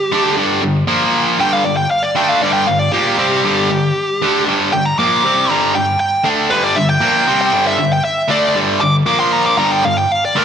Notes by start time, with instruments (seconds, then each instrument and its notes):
Already playing: lead electric guitar G4
0.12 distorted electric guitar D3 A3 D4
0.37 distorted electric guitar G2 D3 G3
0.62 distorted electric guitar G2 D3
0.87 distorted electric guitar A#2 F3 A#3
1.39 distorted electric guitar G2 D3 G3, lead electric guitar G5
1.53 lead electric guitar F5
1.64 distorted electric guitar G2 D3, lead electric guitar D5
1.77 lead electric guitar G5
1.91 lead electric guitar F5
2.03 lead electric guitar D5
2.15 distorted electric guitar D3 A3 D4, lead electric guitar G5
2.29 lead electric guitar F5
2.41 distorted electric guitar G2 D3 G3, lead electric guitar D5
2.53 lead electric guitar G5
2.67 distorted electric guitar G2 D3, lead electric guitar F5
2.79 lead electric guitar D5
2.92 distorted electric guitar A#2 F3 A#3, lead electric guitar G4
3.18 distorted electric guitar C3 G3 C4
3.44 distorted electric guitar G2 D3 G3
3.70 distorted electric guitar G2 D3
4.22 distorted electric guitar D3 A3 D4
4.47 distorted electric guitar G2 D3 G3
4.73 distorted electric guitar G2 D3, lead electric guitar G5
4.86 lead electric guitar A#5
4.99 distorted electric guitar A#2 F3 A#3, lead electric guitar D6
5.25 distorted electric guitar C3 G3 C4
5.50 distorted electric guitar G2 D3 G3, lead electric guitar A#5
5.75 distorted electric guitar G2 D3, lead electric guitar G5
6.00 lead electric guitar G5
6.24 distorted electric guitar D3 A3 D4
6.50 distorted electric guitar G2 D3 G3, lead electric guitar B4
6.64 lead electric guitar D5
6.76 distorted electric guitar G2 D3, lead electric guitar E5
6.89 lead electric guitar G5
7.00 distorted electric guitar A#2 F3 A#3
7.27 distorted electric guitar C3 G3 C4
7.41 lead electric guitar G5
7.52 distorted electric guitar G2 D3 G3
7.67 lead electric guitar E5
7.78 distorted electric guitar G2 D3
7.93 lead electric guitar G5
8.04 lead electric guitar E5
8.29 distorted electric guitar D3 A3 D4, lead electric guitar D5
8.55 distorted electric guitar G2 D3 G3
8.81 distorted electric guitar G2 D3, lead electric guitar D6
9.06 distorted electric guitar A#2 F3 A#3, lead electric guitar D6
9.20 lead electric guitar C6
9.33 lead electric guitar A#5
9.46 lead electric guitar D6
9.58 distorted electric guitar G2 D3 G3, lead electric guitar A#5
9.71 lead electric guitar G5
9.84 distorted electric guitar G2 D3, lead electric guitar F5
9.97 lead electric guitar G5
10.12 lead electric guitar F5
10.25 lead electric guitar D5
10.36 distorted electric guitar D3 A3 D4, lead electric guitar A#4